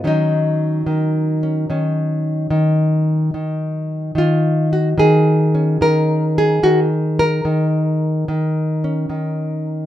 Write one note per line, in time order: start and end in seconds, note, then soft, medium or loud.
0.04 0.85 D#3 medium
0.04 6.63 F#3 soft
0.04 1.42 C#4 soft
0.04 3.35 D#4 medium
0.86 1.68 D#3 medium
1.43 1.69 C#4 soft
1.70 2.49 D#3 medium
1.70 3.31 C#4 soft
2.50 3.30 D#3 medium
3.34 4.15 D#3 medium
4.15 4.97 D#3 medium
4.15 4.72 F4 medium
4.73 4.88 F#4 medium
4.98 5.81 D#3 medium
4.98 5.81 G#4 medium
5.55 6.66 C#4 soft
5.81 6.63 D#3 medium
5.81 6.37 A#4 medium
6.38 7.19 G#4 medium
6.63 7.44 D#3 medium
6.63 6.79 F#4 medium
7.19 9.65 A#4 loud
7.45 8.28 D#3 medium
8.28 9.09 D#3 medium
8.84 9.86 C#4 soft
9.09 9.86 D#3 medium